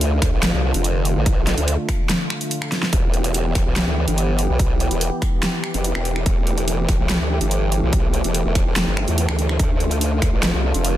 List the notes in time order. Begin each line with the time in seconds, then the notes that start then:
Already playing: D2 D3 A3 F4
0.01 closed hi-hat
0.22 D2, finger snap, kick, open hi-hat
0.33 A1
0.43 snare, closed hi-hat
0.53 C2
0.74 F1, closed hi-hat
0.84 closed hi-hat
1.05 closed hi-hat
1.16 A1
1.26 kick, closed hi-hat
1.47 snare, closed hi-hat
1.58 D2, closed hi-hat
1.68 closed hi-hat
1.89 finger snap, kick, open hi-hat
2.09 snare, closed hi-hat
2.30 finger snap
2.41 closed hi-hat
2.51 closed hi-hat
2.62 finger snap
2.72 snare, closed hi-hat
2.83 snare
2.93 E1 E3 B3 G4, kick, closed hi-hat
3.14 closed hi-hat
3.24 closed hi-hat
3.34 closed hi-hat
3.55 E1, finger snap, kick, open hi-hat
3.66 B1
3.76 snare, closed hi-hat
3.87 D2
4.08 G1, closed hi-hat
4.18 closed hi-hat
4.39 closed hi-hat
4.49 B1
4.59 kick, closed hi-hat
4.80 closed hi-hat
4.91 E1, closed hi-hat
5.01 closed hi-hat
5.22 finger snap, kick, open hi-hat
5.43 snare, closed hi-hat
5.64 finger snap
5.74 F1, closed hi-hat
5.84 closed hi-hat
5.95 E1, finger snap
6.05 closed hi-hat
6.16 finger snap
6.26 E1 A3, kick, closed hi-hat
6.47 closed hi-hat
6.58 closed hi-hat
6.68 closed hi-hat
6.89 E1, finger snap, kick, open hi-hat
6.99 B1
7.09 snare, closed hi-hat
7.20 D2
7.41 G1, closed hi-hat
7.51 closed hi-hat
7.72 closed hi-hat
7.83 B1
7.93 kick, closed hi-hat
8.14 closed hi-hat
8.24 E1, closed hi-hat
8.35 closed hi-hat
8.45 E1
8.55 finger snap, kick, open hi-hat
8.66 E1
8.76 E1, snare, closed hi-hat
8.87 G1
8.97 finger snap
9.08 E2, closed hi-hat
9.18 closed hi-hat
9.29 D2, finger snap
9.39 closed hi-hat
9.49 finger snap
9.59 D2 D3 F4, kick, closed hi-hat
9.80 closed hi-hat
9.91 closed hi-hat
10.01 closed hi-hat
10.22 D2, finger snap, kick, open hi-hat
10.33 A1
10.43 snare, closed hi-hat
10.54 C2
10.74 F1, closed hi-hat
10.85 closed hi-hat